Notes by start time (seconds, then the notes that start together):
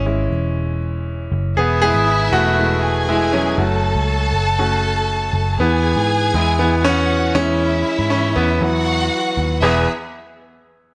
Already playing: G#1 E3 G#3 C#4 E4
0.06 G#3 C#4 E4
0.31 E1
1.32 F#1
1.57 E1 B3 E4 G#4 E5
1.82 G#3 B3 E4 G#4
1.94 G#1
2.32 E1 A3 F#4
2.59 G#3 B3 E4
2.82 G#4 G#5
3.09 G#3 E4
3.33 F#3 C#4
3.57 F#1 A3 C#4 F#4 A4 A5
3.95 C#2
4.33 F#1
4.59 A3 C#4 F#4
5.33 F#1
5.59 E2 E3 B3 G#4 G#5
5.96 G#2
6.34 E2 G#3 B3 E4
6.59 E3 B3
6.84 E3 C#4 F#4 F#5
7.35 E2 E3 G#3 C#4 E4 E5
7.99 G#2
8.10 E3 C#4
8.36 E2 E3 B3
8.61 E2 F#3 B3 E4 F#4 F#5
9.37 D#2
9.62 E1 E2 B3 E4 G#4 B4 E5